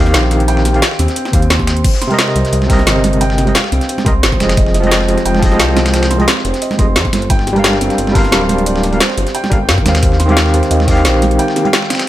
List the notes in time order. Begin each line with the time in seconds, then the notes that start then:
Already playing: D#2 D#3 C4 C5 D#5 G5 C6
0.00 G4 F5
0.06 snare
0.14 A#1 C5, snare, closed hi-hat
0.23 snare
0.31 G4, snare, closed hi-hat
0.40 closed hi-hat
0.48 G5, closed hi-hat
0.57 snare
0.65 G4, snare, closed hi-hat
0.73 D#3 C4 G4 F5, closed hi-hat
0.82 F5, snare, closed hi-hat
0.91 snare
0.99 D#2 C4, closed hi-hat
1.08 snare, closed hi-hat
1.16 C5, closed hi-hat
1.25 snare
1.32 D#2 D#3 C4 G4 C5 F5, kick, closed hi-hat
1.42 closed hi-hat
1.50 C6, snare, closed hi-hat
1.59 kick, snare
1.67 C5, snare, closed hi-hat
1.77 closed hi-hat
1.84 C5, kick, closed hi-hat, crash
1.94 snare
2.02 C6, snare, closed hi-hat
2.07 C3 C4, closed hi-hat, high conga
2.12 A#4 D#5
2.19 C5, snare, closed hi-hat
2.28 snare
2.36 C2 C5, closed hi-hat
2.45 snare, closed hi-hat
2.53 C2 D#5, closed hi-hat
2.62 snare, high conga
2.66 C3 C4, kick, snare, closed hi-hat, open hi-hat
2.71 A#4 D#5
2.79 snare
2.87 G1 C5, snare, closed hi-hat
2.96 snare
3.04 G4, snare, closed hi-hat, high conga
3.13 closed hi-hat
3.21 G5, closed hi-hat
3.30 snare
3.38 G4, snare, closed hi-hat
3.45 C3 C4 A#4 D#5, closed hi-hat, high conga
3.55 F5, snare, closed hi-hat
3.64 snare
3.72 C2 C4, closed hi-hat
3.81 snare, closed hi-hat
3.89 C5, closed hi-hat
3.98 snare, high conga
4.04 C2 C3 C4 A#4 D#5 C6, kick, closed hi-hat
4.23 G1 C5, snare, closed hi-hat
4.32 kick, snare
4.37 F1 F3 C4 C5, snare, closed hi-hat, high conga
4.41 G#4 D#5
4.49 snare, closed hi-hat
4.57 D#5, kick, closed hi-hat
4.66 snare
4.74 D#5, snare, closed hi-hat
4.80 F3 C4, closed hi-hat, high conga
4.85 G#3 D#5
4.91 C5, snare, closed hi-hat
5.01 snare
5.08 F1 G4, closed hi-hat
5.18 snare, closed hi-hat
5.25 F1 G5, closed hi-hat
5.35 snare, high conga
5.39 F3 C4 G4, kick, snare, closed hi-hat, open hi-hat
5.44 G#3 D#5
5.52 snare
5.59 C2 F5, snare, closed hi-hat
5.69 snare
5.76 C4, snare, closed hi-hat, high conga
5.86 snare, closed hi-hat
5.94 C5, snare, closed hi-hat
6.03 snare, closed hi-hat
6.11 C6, snare, closed hi-hat
6.18 F3 C4 G#4 D#5, closed hi-hat, high conga
6.28 C5, snare, closed hi-hat
6.37 snare
6.45 F1 C5, closed hi-hat
6.54 snare, closed hi-hat
6.62 D#5, closed hi-hat
6.71 snare, high conga
6.77 F1 F3 C4 G#4 D#5 C6, kick, closed hi-hat
6.96 F2 C5, snare, closed hi-hat
7.05 kick, snare
7.13 G1 C5, snare, closed hi-hat, high conga
7.22 closed hi-hat
7.30 G5, kick, closed hi-hat
7.39 snare
7.47 G4, snare, closed hi-hat
7.53 G3 D4, closed hi-hat, high conga
7.57 A#4 F5
7.64 F5, snare, closed hi-hat
7.73 snare
7.81 G1 C4, closed hi-hat
7.90 snare, closed hi-hat
7.98 G1 C5, closed hi-hat
8.07 snare, high conga
8.12 G3 D4 C6, kick, snare, closed hi-hat, open hi-hat
8.16 A#4 F5
8.24 snare
8.32 D1 C5, snare, closed hi-hat
8.41 snare
8.49 C5, snare, closed hi-hat, high conga
8.58 closed hi-hat
8.66 D5, closed hi-hat
8.76 snare
8.83 D5, snare, closed hi-hat
8.91 G3 D4 A#4 F5, closed hi-hat, high conga
9.00 C5, snare, closed hi-hat
9.10 snare
9.18 G1 G4, closed hi-hat
9.27 snare, closed hi-hat
9.35 G5, closed hi-hat
9.44 snare, high conga
9.50 G1 G3 D4 G4 A#4 F5, kick, closed hi-hat
9.69 G2 F5, snare, closed hi-hat
9.78 kick, snare
9.82 D#2 D#3 C4, snare, closed hi-hat, high conga
9.87 G4 F5
9.95 snare, closed hi-hat
10.03 C5, kick, closed hi-hat
10.12 snare
10.20 C6, snare, closed hi-hat
10.26 D#3 C4, closed hi-hat, high conga
10.30 G4 F5
10.37 C5, snare, closed hi-hat
10.46 snare
10.54 D#2 C5, closed hi-hat
10.63 snare, closed hi-hat
10.71 D#2 D#5, closed hi-hat
10.80 snare, high conga
10.85 D#3 C4 D#5, kick, snare, closed hi-hat, open hi-hat
10.89 G4 F5
10.97 snare
11.05 A#1 C5, snare, closed hi-hat
11.14 snare
11.22 G4, snare, closed hi-hat, high conga
11.31 closed hi-hat
11.39 G5, closed hi-hat
11.48 snare
11.56 G4, snare, closed hi-hat
11.63 D#3 C4 G4 F5, closed hi-hat, high conga
11.73 F5, snare, closed hi-hat
11.82 snare
11.90 C4, snare, closed hi-hat
11.95 snare, closed hi-hat
11.99 snare, closed hi-hat